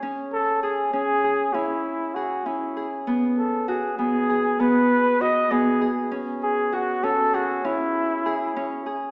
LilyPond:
<<
  \new Staff \with { instrumentName = "Flugelhorn" } { \time 5/8 \key cis \minor \tempo 4 = 98 r8 a'8 gis'8 gis'4 | e'4 fis'8 e'8. r16 | r8 a'8 gis'8 gis'4 | b'4 dis''8 gis'8. r16 |
r8 gis'8 fis'8 a'8 fis'8 | e'2 r8 | }
  \new Staff \with { instrumentName = "Harp" } { \time 5/8 \key cis \minor cis'4 gis'8 cis'8 gis'8 | cis'4 gis'8 cis'8 gis'8 | b4 fis'8 b8 gis'8 | b4 fis'8 b8 gis'8 |
cis'4 fis'8 cis'8 gis'8 | cis'4 gis'8 cis'8 gis'8 | }
>>